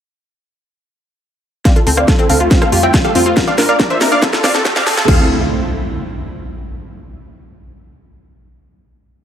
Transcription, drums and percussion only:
1.65 kick loud
1.65 snare soft
1.65 closed hi-hat medium
1.76 closed hi-hat soft
1.87 open hi-hat loud
1.97 cross-stick medium
1.97 closed hi-hat soft
2.08 kick loud
2.08 snare soft
2.08 closed hi-hat medium
2.19 closed hi-hat soft
2.29 open hi-hat loud
2.51 kick loud
2.51 snare medium
2.51 closed hi-hat medium
2.62 cross-stick medium
2.62 closed hi-hat soft
2.72 open hi-hat loud
2.83 closed hi-hat soft
2.94 kick loud
2.94 snare medium
2.94 closed hi-hat medium
3.04 closed hi-hat soft
3.15 open hi-hat loud
3.26 closed hi-hat soft
3.37 kick loud
3.37 snare medium
3.37 closed hi-hat medium
3.47 closed hi-hat soft
3.58 snare medium
3.58 open hi-hat loud
3.69 closed hi-hat soft
3.80 kick loud
3.80 snare medium
3.80 closed hi-hat medium
3.90 closed hi-hat soft
4.01 snare medium
4.01 open hi-hat loud
4.12 closed hi-hat soft
4.22 kick loud
4.22 snare medium
4.22 closed hi-hat medium
4.33 snare medium
4.33 closed hi-hat soft
4.44 kick medium
4.44 snare loud
4.44 open hi-hat loud
4.55 snare medium
4.55 closed hi-hat soft
4.65 kick loud
4.65 snare loud
4.65 closed hi-hat medium
4.76 snare medium
4.76 closed hi-hat soft
4.87 snare loud
4.87 open hi-hat loud
4.97 snare loud
4.97 closed hi-hat soft
5.08 kick loud
5.08 crash medium

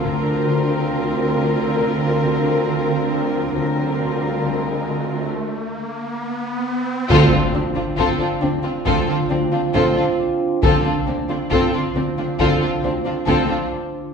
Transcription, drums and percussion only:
0.05 taiko soft
7.10 taiko medium
7.98 taiko medium
8.86 taiko medium
9.75 taiko medium
10.63 taiko medium
11.51 taiko medium
12.39 taiko medium
13.28 taiko medium

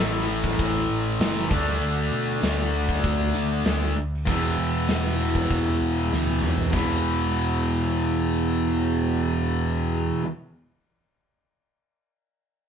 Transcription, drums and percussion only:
0.29 closed hi-hat medium
0.44 kick medium
0.59 kick medium
0.59 closed hi-hat medium
0.90 closed hi-hat medium
1.20 snare loud
1.20 closed hi-hat medium
1.51 kick loud
1.51 closed hi-hat medium
1.81 closed hi-hat medium
2.12 closed hi-hat medium
2.43 snare medium
2.43 closed hi-hat medium
2.74 closed hi-hat medium
2.89 kick medium
3.03 kick medium
3.03 closed hi-hat medium
3.35 closed hi-hat medium
3.65 snare loud
3.65 closed hi-hat medium
3.97 closed hi-hat medium
4.27 kick medium
4.27 closed hi-hat medium
4.58 closed hi-hat medium
4.88 snare medium
4.88 closed hi-hat medium
5.20 closed hi-hat medium
5.35 kick medium
5.50 kick medium
5.50 closed hi-hat medium
5.81 closed hi-hat medium
6.13 snare medium
6.27 high tom medium
6.42 mid tom medium
6.58 floor tom medium
6.73 kick medium
6.73 floor tom medium
6.73 crash medium

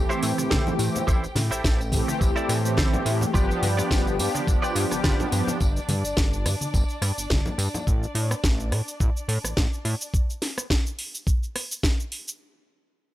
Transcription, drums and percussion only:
0.11 tambourine soft
0.11 cabasa soft
0.23 open hi-hat loud
0.23 tambourine medium
0.38 cross-stick medium
0.38 tambourine soft
0.38 muted conga medium
0.38 cabasa medium
0.51 kick loud
0.51 snare loud
0.51 tambourine soft
0.51 high conga medium
0.51 cabasa medium
0.67 tambourine soft
0.67 low conga medium
0.67 cabasa soft
0.79 open hi-hat loud
0.79 tambourine medium
0.96 tambourine soft
0.96 muted conga soft
0.96 low conga medium
0.96 cabasa medium
1.08 kick loud
1.08 tambourine medium
1.08 cabasa medium
1.24 tambourine soft
1.24 cabasa soft
1.36 snare medium
1.36 open hi-hat loud
1.36 tambourine medium
1.36 muted conga medium
1.36 high conga loud
1.51 tambourine soft
1.51 cabasa medium
1.64 kick loud
1.64 snare loud
1.64 tambourine soft
1.64 cabasa medium
1.81 tambourine soft
1.81 cabasa soft
1.92 kick medium
1.92 open hi-hat loud
1.92 tambourine loud
1.92 muted conga medium
2.08 tambourine soft
2.08 high conga medium
2.08 cabasa medium
2.21 kick loud
2.21 tambourine medium
2.21 cabasa medium
2.36 tambourine soft
2.36 cabasa soft
2.49 cross-stick medium
2.49 open hi-hat loud
2.49 tambourine medium
2.65 tambourine soft
2.65 cabasa medium
2.77 kick loud
2.77 snare loud
2.77 tambourine medium
2.77 high conga medium
2.77 cabasa medium
2.93 tambourine soft
2.93 low conga medium
2.93 cabasa soft
3.06 open hi-hat loud
3.06 tambourine medium
3.21 tambourine soft
3.21 low conga medium
3.21 cabasa medium
3.34 kick loud
3.34 tambourine medium
3.34 cabasa medium
3.51 tambourine soft
3.51 cabasa soft
3.63 open hi-hat loud
3.63 tambourine medium
3.63 muted conga medium
3.63 high conga medium
3.78 cross-stick medium
3.78 tambourine soft
3.78 cabasa medium
3.91 kick loud
3.91 snare loud
3.91 tambourine medium
3.91 cabasa medium
4.07 tambourine soft
4.07 cabasa soft
4.19 open hi-hat loud
4.19 tambourine loud
4.34 tambourine soft
4.34 high conga medium
4.34 cabasa medium
4.47 kick loud
4.47 tambourine medium
4.47 cabasa medium
4.64 tambourine soft
4.64 cabasa soft
4.76 open hi-hat loud
4.76 tambourine loud
4.91 cross-stick medium
4.91 tambourine soft
4.91 muted conga soft
4.91 cabasa medium
5.04 kick loud
5.04 snare loud
5.04 tambourine soft
5.04 high conga medium
5.04 cabasa medium
5.19 tambourine soft
5.19 low conga medium
5.19 cabasa soft
5.32 open hi-hat loud
5.32 tambourine loud
5.47 tambourine soft
5.47 muted conga soft
5.47 low conga medium
5.47 cabasa medium
5.60 kick loud
5.60 tambourine medium
5.60 cabasa medium
5.76 tambourine soft
5.76 cabasa soft
5.88 open hi-hat loud
5.88 tambourine loud
5.88 muted conga medium
5.88 high conga medium
6.05 tambourine soft
6.05 cabasa medium
6.17 kick loud
6.17 snare loud
6.17 tambourine medium
6.17 cabasa medium
6.33 tambourine soft
6.33 cabasa soft
6.46 cross-stick medium
6.46 open hi-hat medium
6.46 tambourine loud
6.46 muted conga medium
6.61 tambourine soft
6.61 high conga medium
6.61 cabasa medium
6.74 kick loud
6.74 tambourine medium
6.74 cabasa medium
6.88 tambourine soft
6.88 cabasa soft
7.02 cross-stick medium
7.02 open hi-hat loud
7.02 tambourine medium
7.18 tambourine soft
7.18 cabasa medium
7.30 kick loud
7.30 snare loud
7.30 tambourine soft
7.30 high conga medium
7.30 cabasa medium
7.46 tambourine soft
7.46 low conga loud
7.46 cabasa soft
7.59 open hi-hat medium
7.59 tambourine loud
7.74 tambourine soft
7.74 low conga medium
7.74 cabasa medium
7.87 kick loud
7.87 cabasa medium
8.03 cabasa soft
8.15 open hi-hat loud
8.31 cross-stick medium
8.31 cabasa medium
8.44 kick loud
8.44 snare loud
8.44 cabasa medium
8.60 cabasa soft
8.72 cross-stick medium
8.72 open hi-hat medium
8.88 cabasa medium
9.00 kick loud
9.00 cabasa medium
9.17 cabasa soft
9.29 open hi-hat loud
9.45 cross-stick medium
9.45 cabasa medium
9.57 kick loud
9.57 snare loud
9.57 cabasa medium
9.73 cabasa soft
9.85 open hi-hat medium
10.01 cabasa medium
10.14 kick loud
10.14 cabasa medium
10.30 cabasa soft
10.42 snare medium
10.42 open hi-hat loud
10.58 cross-stick medium
10.58 cabasa medium
10.70 kick loud
10.70 snare loud
10.70 cabasa medium
10.87 cabasa soft
10.99 open hi-hat medium
11.15 cabasa medium
11.27 kick loud
11.27 cabasa medium
11.43 cabasa soft
11.56 cross-stick medium
11.56 open hi-hat loud
11.71 cabasa medium
11.83 kick loud
11.83 snare loud
11.83 cabasa medium
12.00 cabasa soft
12.12 open hi-hat medium
12.28 cabasa medium

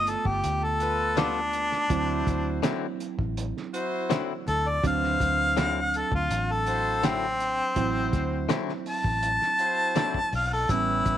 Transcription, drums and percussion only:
0.07 closed hi-hat medium
0.25 kick medium
0.44 closed hi-hat medium
0.80 closed hi-hat medium
1.17 snare loud
1.17 closed hi-hat medium
1.53 closed hi-hat medium
1.72 snare soft
1.90 kick loud
1.90 closed hi-hat medium
2.27 kick medium
2.27 closed hi-hat medium
2.63 snare loud
2.63 closed hi-hat medium
3.00 closed hi-hat medium
3.19 kick medium
3.37 closed hi-hat medium
3.57 snare soft
3.74 closed hi-hat medium
4.10 snare loud
4.10 closed hi-hat medium
4.48 closed hi-hat medium
4.84 kick loud
4.84 closed hi-hat medium
5.04 snare soft
5.20 kick medium
5.20 closed hi-hat medium
5.57 snare loud
5.57 closed hi-hat medium
5.94 closed hi-hat medium
6.12 kick medium
6.30 closed hi-hat medium
6.67 closed hi-hat medium
7.03 snare loud
7.03 closed hi-hat medium
7.40 closed hi-hat medium
7.76 kick loud
7.76 closed hi-hat medium
8.13 kick medium
8.13 snare soft
8.13 closed hi-hat medium
8.49 snare loud
8.49 closed hi-hat medium
8.69 snare soft
8.86 open hi-hat medium
9.04 kick medium
9.23 closed hi-hat medium
9.42 snare soft
9.59 closed hi-hat medium
9.96 snare loud
9.96 closed hi-hat medium
10.14 kick medium
10.32 open hi-hat medium
10.69 kick loud
10.69 closed hi-hat medium
11.06 kick medium
11.06 closed hi-hat medium

